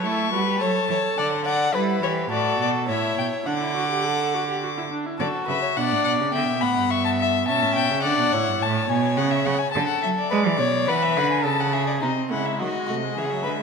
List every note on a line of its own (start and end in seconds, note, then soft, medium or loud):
0.04 0.32 A3 medium
0.04 0.33 E4 medium
0.04 0.32 A4 medium
0.04 0.59 C#6 medium
0.33 0.60 G3 medium
0.33 0.47 F#4 medium
0.33 0.63 B4 medium
0.48 0.61 G4 medium
0.59 0.69 F#3 medium
0.59 1.72 A4 medium
0.59 0.89 C#5 medium
0.59 1.19 A5 medium
0.89 0.97 E3 medium
0.89 1.17 C#5 medium
1.18 1.73 D3 medium
1.18 1.27 D5 medium
1.18 1.44 F#5 medium
1.45 1.73 D5 medium
1.45 1.76 F#5 medium
1.74 2.02 G3 medium
1.74 2.04 E4 medium
1.74 1.82 B4 medium
1.74 2.31 B4 medium
2.02 2.30 E3 medium
2.02 2.30 G4 medium
2.02 2.11 C#5 medium
2.30 2.59 A2 medium
2.30 2.87 F#4 medium
2.30 2.87 A4 medium
2.30 2.59 D5 medium
2.60 2.90 B2 medium
2.60 2.69 D5 medium
2.88 3.17 A2 medium
2.88 3.45 E4 medium
2.88 3.48 C#5 medium
2.88 3.17 E5 medium
3.18 3.26 B2 medium
3.18 3.26 G5 medium
3.46 4.87 D3 medium
3.46 3.52 D4 medium
3.46 4.91 F#5 medium
3.46 4.88 D6 medium
3.61 3.74 E4 medium
3.75 3.89 F#4 medium
3.89 4.05 G4 medium
4.04 4.36 A4 medium
4.34 4.48 F#4 medium
4.48 4.62 G4 medium
4.63 4.68 F#4 medium
4.77 4.83 E4 medium
4.91 5.07 D4 medium
5.06 5.20 E4 medium
5.19 5.28 D3 medium
5.19 5.78 F#4 medium
5.19 5.46 A4 medium
5.19 5.28 D5 medium
5.47 5.57 C#3 medium
5.47 5.61 B4 medium
5.47 5.78 E5 medium
5.62 5.68 C#5 medium
5.76 5.93 B2 medium
5.76 6.34 D4 medium
5.76 6.33 D5 medium
5.76 6.03 F#5 medium
5.91 6.05 A2 medium
6.04 6.22 B2 medium
6.04 6.12 F#5 medium
6.20 6.33 C#3 medium
6.32 6.48 D3 medium
6.32 7.50 B3 medium
6.32 6.64 E5 medium
6.32 6.63 G5 medium
6.49 6.64 B2 medium
6.61 6.78 A2 medium
6.61 6.92 F#5 medium
6.61 6.92 B5 medium
6.77 7.47 G2 medium
6.90 7.46 E5 medium
6.90 7.04 C#6 medium
7.05 7.11 A5 medium
7.20 7.47 E5 medium
7.47 7.63 B2 medium
7.47 8.04 C#4 medium
7.47 8.02 E5 medium
7.47 7.74 A5 medium
7.62 7.77 A2 medium
7.75 7.92 B2 medium
7.75 8.02 G5 loud
7.90 8.06 C#3 medium
8.02 8.18 D3 medium
8.02 8.35 D4 medium
8.02 8.34 D5 medium
8.02 8.63 F#5 medium
8.19 8.24 B2 medium
8.32 8.49 A2 medium
8.32 8.61 E4 medium
8.32 8.60 C#5 medium
8.47 8.61 G2 medium
8.60 8.89 A2 loud
8.60 9.71 C#5 medium
8.60 8.91 A5 medium
8.89 9.19 B2 medium
8.89 9.19 G#5 medium
9.17 9.45 C#3 loud
9.17 9.32 F#5 medium
9.30 9.47 E5 medium
9.45 9.54 C#3 medium
9.45 9.60 F#5 medium
9.59 9.71 G#5 medium
9.71 9.83 D3 loud
9.71 10.30 A4 medium
9.71 9.86 A5 medium
9.87 10.01 F#5 medium
10.03 10.11 F#3 medium
10.03 10.08 E5 medium
10.18 10.90 D5 medium
10.31 10.48 G#3 loud
10.31 10.39 B4 medium
10.46 10.61 E3 medium
10.58 10.90 B2 medium
10.58 10.89 C#5 medium
10.88 11.18 E3 loud
10.88 11.45 B4 medium
10.88 11.04 F#5 medium
11.02 11.18 E5 medium
11.17 11.47 D3 medium
11.17 11.30 F#5 medium
11.31 11.45 G#5 medium
11.44 12.02 C#3 medium
11.44 11.74 A4 medium
11.44 11.62 A5 medium
11.60 11.74 F#5 medium
11.73 12.01 G#4 medium
11.73 11.86 E5 medium
11.87 11.92 D5 medium
12.01 12.11 C3 medium
12.01 12.33 C4 medium
12.01 12.10 D#4 medium
12.01 12.28 D#5 medium
12.30 12.59 C#3 medium
12.30 12.62 G#3 medium
12.30 12.61 E4 medium
12.30 12.47 F#5 medium
12.45 12.59 E5 medium
12.60 12.68 D#3 medium
12.60 12.74 F#3 medium
12.60 12.86 F#4 medium
12.60 13.19 D#5 medium
12.74 12.91 G#3 medium
12.87 13.15 C3 medium
12.87 13.04 A3 medium
12.87 12.95 F#4 medium
13.03 13.17 G#3 medium
13.15 13.44 C#3 medium
13.15 13.23 E3 medium
13.15 13.43 G#4 medium
13.15 13.25 E5 medium
13.23 13.31 F#5 medium
13.29 13.47 F#3 medium
13.29 13.63 E5 medium
13.44 13.63 D3 medium
13.44 13.61 G#3 medium
13.44 13.52 B4 medium
13.60 13.63 A3 medium